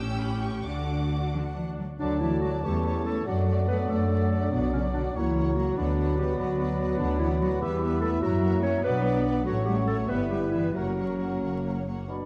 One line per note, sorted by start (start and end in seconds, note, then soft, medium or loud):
0.00 0.65 A1 soft
0.00 0.66 A2 medium
0.00 0.66 C#4 medium
0.00 0.65 G4 medium
0.00 0.64 G5 medium
0.00 0.21 E6 medium
0.20 0.43 B5 medium
0.42 0.65 C#6 medium
0.65 1.76 D2 soft
0.65 1.27 D3 soft
0.65 1.77 D4 soft
0.65 1.79 F#4 soft
0.65 1.65 F#5 soft
0.65 1.33 D6 medium
1.34 1.42 D3 medium
1.55 1.63 E3 soft
1.79 1.87 F#3 soft
1.99 2.56 D2 medium
1.99 2.20 D3 medium
1.99 2.66 F#3 soft
1.99 2.21 F#3 soft
1.99 2.59 A3 medium
1.99 2.22 D4 medium
1.99 2.59 F#4 medium
1.99 2.20 D5 soft
1.99 2.67 D5 soft
1.99 2.20 A5 soft
1.99 3.22 A5 soft
2.20 2.29 E3 medium
2.20 2.42 F#3 soft
2.20 2.41 E4 medium
2.20 2.42 D5 soft
2.20 2.41 A5 soft
2.42 2.51 F#3 medium
2.42 2.64 F#3 soft
2.42 2.51 F#4 medium
2.42 2.63 D5 soft
2.42 2.62 A5 soft
2.63 3.19 E2 soft
2.63 3.28 E3 soft
2.63 3.05 G3 medium
2.63 2.84 A3 soft
2.63 3.22 C#4 soft
2.63 3.08 G4 medium
2.63 4.48 A4 medium
2.63 2.84 C#5 soft
2.63 3.27 C#5 soft
2.63 2.84 A5 soft
2.85 3.05 A3 soft
2.85 3.05 C#5 soft
2.85 3.05 A5 soft
3.06 3.14 A3 medium
3.06 3.25 A3 soft
3.06 3.29 A4 medium
3.06 3.26 C#5 soft
3.06 3.26 A5 soft
3.25 3.81 F#2 medium
3.25 3.66 F#3 medium
3.25 5.77 F#3 medium
3.25 3.46 A3 soft
3.25 5.11 D4 medium
3.25 3.67 F#4 medium
3.25 3.46 D5 soft
3.25 5.18 D5 soft
3.25 5.19 F#5 soft
3.25 3.46 F#5 soft
3.47 3.67 A3 soft
3.47 3.68 D5 soft
3.47 3.68 F#5 soft
3.68 3.88 A3 soft
3.68 3.89 B3 medium
3.68 3.77 B4 medium
3.68 3.89 D5 soft
3.68 3.88 F#5 soft
3.89 4.45 F#2 medium
3.89 4.52 A3 soft
3.89 4.10 A3 soft
3.89 4.51 A4 medium
3.89 4.10 D5 soft
3.89 4.09 F#5 soft
4.11 4.30 A3 soft
4.11 4.31 D5 soft
4.11 4.30 F#5 soft
4.31 4.52 A3 soft
4.31 4.53 D5 soft
4.31 4.50 F#5 soft
4.51 5.08 B1 medium
4.51 4.72 B2 medium
4.51 4.73 F#3 soft
4.51 4.72 B3 medium
4.51 6.95 F#4 medium
4.51 4.74 D5 soft
4.51 4.72 F#5 soft
4.72 4.94 C#3 medium
4.72 4.94 F#3 soft
4.72 4.82 C#4 medium
4.72 4.95 D5 soft
4.72 4.93 F#5 soft
4.93 5.01 D3 medium
4.93 5.16 F#3 soft
4.93 5.03 D4 medium
4.93 5.14 F#5 soft
4.98 5.16 D5 soft
5.13 5.69 C#2 soft
5.13 5.56 E3 medium
5.13 5.72 A#3 soft
5.13 5.34 A#3 soft
5.13 5.58 E4 medium
5.13 5.79 C#5 soft
5.13 5.36 C#5 soft
5.13 5.36 F#5 soft
5.13 5.80 A#5 soft
5.36 5.55 A#3 soft
5.36 5.56 C#5 soft
5.36 5.55 F#5 soft
5.56 5.76 F#3 soft
5.56 5.77 A#3 soft
5.56 5.77 F#4 medium
5.56 5.77 C#5 soft
5.56 5.77 F#5 soft
5.76 6.31 D2 medium
5.76 6.18 D3 medium
5.76 7.63 F#3 soft
5.76 8.05 B3 medium
5.76 5.96 B3 soft
5.76 6.17 D4 medium
5.76 5.98 B4 soft
5.76 7.61 D5 soft
5.76 5.97 F#5 soft
5.76 8.26 B5 soft
5.98 6.18 B3 soft
5.98 6.19 B4 soft
5.98 6.18 F#5 soft
6.18 6.39 G3 medium
6.18 6.37 B3 soft
6.18 6.31 G4 medium
6.18 6.39 B4 soft
6.18 6.38 F#5 soft
6.31 6.39 G4 soft
6.38 6.92 D2 soft
6.38 7.00 F#3 medium
6.38 6.58 B3 soft
6.38 7.00 F#4 medium
6.38 6.59 B4 soft
6.38 6.59 F#5 soft
6.59 6.78 B3 soft
6.59 6.80 B4 soft
6.59 6.79 F#5 soft
6.79 6.98 B3 soft
6.79 7.00 B4 soft
6.79 6.99 F#5 soft
6.98 7.53 D2 medium
6.98 7.20 D3 medium
6.98 7.18 B3 soft
6.98 7.19 D4 medium
6.98 7.57 F#4 medium
6.98 7.20 B4 soft
6.98 7.20 F#5 soft
7.20 7.40 E3 medium
7.20 7.40 B3 soft
7.20 7.29 E4 medium
7.20 7.41 B4 soft
7.20 7.41 F#5 soft
7.39 7.48 F#3 medium
7.39 7.60 B3 soft
7.39 7.60 F#4 medium
7.39 7.61 B4 soft
7.39 7.62 F#5 soft
7.61 8.15 E2 medium
7.61 8.24 E3 soft
7.61 8.01 G3 medium
7.61 7.81 B3 medium
7.61 8.79 E4 medium
7.61 8.00 G4 medium
7.61 7.82 B4 medium
7.61 8.55 E5 medium
7.61 7.83 E5 soft
7.82 8.02 B3 soft
7.82 8.02 B4 soft
7.82 8.03 E5 soft
8.01 8.22 A3 medium
8.01 8.23 B3 soft
8.01 8.10 A4 medium
8.01 8.23 B4 soft
8.05 8.22 E5 soft
8.22 8.76 F#2 medium
8.22 9.29 F#3 medium
8.22 8.62 F#3 medium
8.22 8.43 F#3 medium
8.22 8.79 A#3 medium
8.22 8.62 F#4 medium
8.22 8.42 A#4 medium
8.22 8.42 E5 soft
8.22 8.63 A#5 soft
8.43 8.63 F#3 medium
8.43 8.62 A#4 soft
8.43 8.62 E5 soft
8.62 8.83 F#3 soft
8.62 8.83 C#4 medium
8.62 8.83 A#4 soft
8.62 8.83 C#5 medium
8.62 8.83 E5 soft
8.83 9.38 B1 medium
8.83 9.03 F#3 soft
8.83 9.44 B3 medium
8.83 9.41 B3 medium
8.83 9.41 D4 medium
8.83 9.23 B4 medium
8.83 9.04 B4 soft
8.83 9.03 D5 soft
8.83 9.42 D5 medium
8.83 9.42 F#5 soft
9.04 9.24 F#3 soft
9.04 9.24 B4 medium
9.04 9.23 D5 soft
9.25 9.45 F#3 soft
9.25 9.45 B4 soft
9.25 9.45 D5 soft
9.44 10.02 A1 medium
9.44 9.53 F#3 medium
9.44 10.05 F#3 medium
9.44 10.04 A3 medium
9.44 9.66 A3 medium
9.44 10.04 C#4 medium
9.44 9.65 F#4 medium
9.44 9.65 C#5 soft
9.44 10.12 C#5 soft
9.44 9.65 F#5 soft
9.44 10.13 F#5 soft
9.65 9.87 G3 medium
9.65 9.87 A3 soft
9.65 9.75 G4 medium
9.65 9.87 C#5 soft
9.65 9.85 F#5 soft
9.86 10.08 A3 medium
9.86 10.09 A3 soft
9.86 9.97 A4 medium
9.86 10.09 C#5 soft
9.86 10.08 F#5 soft
10.07 10.67 G1 soft
10.07 10.74 G3 soft
10.07 10.70 B3 soft
10.07 10.30 B3 medium
10.07 10.30 B3 soft
10.07 10.70 E4 soft
10.07 10.18 B4 medium
10.07 10.79 B4 soft
10.07 10.30 B4 soft
10.07 10.29 E5 soft
10.07 10.45 E5 soft
10.30 10.39 G3 soft
10.30 10.53 B3 soft
10.30 10.51 G4 medium
10.30 10.52 B4 soft
10.30 10.49 E5 soft
10.43 10.75 D5 soft
10.51 10.74 E3 soft
10.51 10.75 B3 soft
10.51 10.75 E4 medium
10.51 10.73 E5 soft
10.55 10.75 B4 soft
10.74 11.33 F#1 soft
10.74 11.84 F#3 soft
10.74 11.82 A#3 soft
10.74 10.96 A#3 soft
10.74 11.82 C#4 soft
10.74 11.85 F#4 medium
10.74 11.87 A#4 soft
10.74 10.97 C#5 soft
10.74 11.85 C#5 soft
10.74 10.96 F#5 soft
10.97 11.19 A#3 soft
10.97 11.18 C#5 soft
10.97 11.18 F#5 soft
11.19 11.41 A#3 soft
11.19 11.41 C#5 soft
11.19 11.40 F#5 soft
11.41 12.00 F#1 soft
11.41 11.63 A#3 soft
11.41 11.63 C#5 soft
11.41 11.62 F#5 soft
11.63 11.86 A#3 soft
11.63 11.86 C#5 soft
11.63 11.85 F#5 soft
11.86 12.08 A#3 soft
11.86 12.08 C#5 soft
11.86 12.07 F#5 soft
12.07 12.26 B2 soft
12.07 12.26 B3 soft
12.07 12.26 D4 soft
12.07 12.26 F#4 soft
12.07 12.26 D5 soft
12.07 12.26 B5 medium